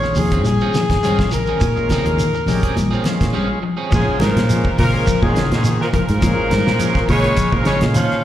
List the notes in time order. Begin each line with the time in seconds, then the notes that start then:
Already playing: A#1 D#3 G#3 C#4 F4 C#5
0.03 muted clean electric guitar stroke, snare, high conga, shekere
0.15 D#2 F3 G#4, muted clean electric guitar stroke, open hi-hat, high conga, low conga, shekere
0.31 C4 C#4 G#4, kick, closed hi-hat, shekere
0.44 A#2 G3, muted clean electric guitar stroke, snare, closed hi-hat, shekere
0.60 F3 C4 C#4 G#4, shekere
0.74 F3, muted clean electric guitar stroke, snare, closed hi-hat, high conga, shekere
0.90 G#1, kick, snare, closed hi-hat, shekere
1.03 F3 G3 G#3 C4 C#4 F4 G#4, snare, closed hi-hat, shekere
1.19 muted clean electric guitar stroke, kick, snare, shekere
1.32 A#1 F3 A#4, muted clean electric guitar stroke, closed hi-hat, low conga, shekere
1.46 C4 C#4 G#4, high conga, shekere
1.60 A#2 D#3 C#4 G#4, kick, closed hi-hat, shekere
1.76 G#3 C#4 F4, muted clean electric guitar stroke, shekere
1.89 C#3 F3 C4 C#4 G#4, kick, snare, closed hi-hat, high conga, shekere
2.04 D#2 G#3 C#4 F4, muted clean electric guitar stroke, closed hi-hat, low conga, shekere
2.18 D#3, closed hi-hat, high conga, shekere
2.33 muted clean electric guitar stroke, high conga, shekere
2.46 A#1 F3 G#3 C#4 G4, muted clean electric guitar stroke, snare, open hi-hat, high conga, low conga, shekere
2.63 C4 G#4, muted fingered electric bass stroke, kick, closed hi-hat, shekere
2.76 A#2 G3, muted clean electric guitar stroke, snare, closed hi-hat, high conga, shekere
2.91 F3 C4 C#4 G#4, shekere
3.04 F3 G#3 C#4 F4, muted clean electric guitar stroke, snare, closed hi-hat, high conga, shekere
3.20 A#2, kick, snare, closed hi-hat, shekere
3.33 F3 G3 C4 C#4 G#4
3.49 muted clean electric guitar stroke
3.62 F3, muted clean electric guitar stroke
3.77 C4 C#4 G#4
3.91 A#2 F3 G#3 C#4 F4 G#4, kick, crash, shekere
3.95 G#2 C#3
4.07 muted fingered electric bass stroke
4.20 G#2 A#2 G3 A#4, snare, closed hi-hat, high conga, shekere
4.25 F3
4.36 A#2, snare, closed hi-hat
4.49 F3 G#3 C#4 F4, snare, closed hi-hat, shekere
4.64 kick, high conga
4.78 A#2 C#3 F3 A#4, kick, open hi-hat, high conga, low conga, shekere
4.93 G#3 C#4 F4
5.06 F3, kick, closed hi-hat, shekere
5.22 G#2 A#2 G#3 C#4 F4 G#4, kick, high conga
5.27 D#3
5.35 C#3, muted fingered electric bass stroke, snare, closed hi-hat, low conga, shekere
5.52 G#2 A#2 D#3 G#4, snare, closed hi-hat
5.63 D#3, closed hi-hat, high conga, shekere
5.80 A#2 F3 A#4, snare
5.92 A#2 F3 A#4, kick, closed hi-hat, high conga, low conga, shekere
6.09 G#2, closed hi-hat
6.21 A#2 F3 G#3 C#4 F4, kick, closed hi-hat, low conga, shekere
6.39 muted fingered electric bass stroke
6.50 G#2 G3, snare, closed hi-hat, high conga, shekere
6.67 A#2, snare
6.79 F3 G#3 C#4 F4, closed hi-hat, shekere
6.95 kick, snare, high conga
7.08 A#2 C#3 G#3 C#5, kick, open hi-hat, high conga, low conga, shekere
7.23 G#3 C#4 F4, closed hi-hat
7.36 F3, kick, closed hi-hat, shekere
7.52 A#2 F3 G#3 C#4 F4 A#4, kick, high conga
7.65 C#3 G#3 C#5, muted fingered electric bass stroke, snare, closed hi-hat, shekere
7.81 A#2, snare, closed hi-hat
7.94 D#3 F3 C#4 F5, closed hi-hat, high conga, shekere
8.11 snare